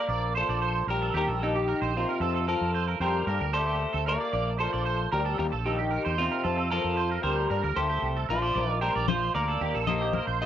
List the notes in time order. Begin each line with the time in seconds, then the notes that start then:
Already playing: A#3 A#4 D5
0.08 A#1 F3 A#3 D4 A#4 D5
0.35 F3 A#3 D4 A4 A#4 C5, muted steel-string acoustic guitar stroke
0.49 A#1 D5
0.62 C5
0.87 A#1 F3 G3 A#3 D4 G4 A#4
1.02 A4
1.14 D#2 G3 A#3 D#4 G4 A#4
1.28 A#1 A4
1.42 D#3 A#3 D#4 G4
1.55 D#4 G4
1.68 A#4
1.82 A#1 C5
1.96 C3 A#3 C4 D#4 F4 G4
2.09 A#4
2.20 F2 F3 C4 F4 A4
2.34 A4
2.46 F3 C4 F4 A4 A#4
2.61 F2
2.74 C5
2.87 A#4
3.00 F2 F3 G3 C4 F4 G4 A4 A#4 C5
3.27 G2 G3 A#3 A4 A#4, muted steel-string acoustic guitar stroke
3.40 D2 A#4
3.53 G3 A3 A#3 D4 G4 A4 C5
3.66 A#3 D4 G4 A4
3.93 D2 A4
4.06 G3 A#3 D4 A4 A#4 D5
4.20 D5
4.33 A#1 F3 A#3 D4 A#4 D5
4.59 F3 A#3 D4 A4 A#4 C5
4.63 F3
4.73 A#1 D5
4.85 C5
5.12 D2 F3 G3 D4 G4 A#4, muted steel-string acoustic guitar stroke
5.25 A4
5.38 D#2 G3 A#3 G4 A#4, muted clean electric guitar stroke, muted steel-string acoustic guitar stroke
5.52 A#1 A4
5.66 D#3 A#3 D#4 G4
5.79 D#4 G4
5.91 A#4
6.05 E2 C5
6.18 C3 A#3 C4 D#4 F4 G4
6.31 A#4
6.44 F2 F3 C4 F4 A4
6.57 A4
6.70 F3 C4 F4 A4 A#4
6.84 F2
6.97 C5
7.11 A#4
7.23 D2 G3 C4 F4 G4 A4 A#4 C5, muted steel-string acoustic guitar stroke
7.50 G2 G3 A#3 D4 A4 A#4
7.64 D2 A#4
7.76 D2 G3 A3 A#3 D4 G4 A4 C5
7.89 A#3 G4 A4
8.02 C2
8.17 A4
8.29 A#1 F3 A#3 D4 F4 A4 A#4 C5, muted steel-string acoustic guitar stroke
8.42 D5
8.55 A#1 F3 A#3 D4 A#4 D5, muted conga
8.81 F3 G3 A#3 D4 G4 A#4 C5
8.96 A#1 D5
9.08 F3 F4 C5, high conga
9.34 D2 F3 A#3 D4 A#4 D5, muted conga
9.48 A4
9.61 D#2 A#3 D#4 G4, muted conga
9.74 A#1 A4
9.87 A#3 D#4 G4 C5 D#5, muted conga, high conga
10.01 D#4 G4
10.13 A#4, high conga
10.27 A#1 C5
10.40 A#3 C4 D#4 G4 F5